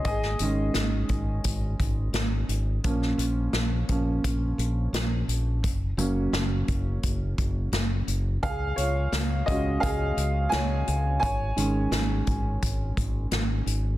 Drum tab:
HH |x-x-x-x-x-x-x-x-|x-x-x-x-x-x-x-x-|x-x-x-x-x-x-x-x-|x-x-x-x-x-x-x-x-|
SD |-o--o-------o---|-o--o-------o---|----o-------o---|----o-------o---|
BD |o-----o-o-o-----|o-----o-o-------|o-----o-o-o-----|o-----o-o-------|

HH |x-x-x-x-x-x-x-x-|
SD |----o-------o---|
BD |o-----o-o-o-----|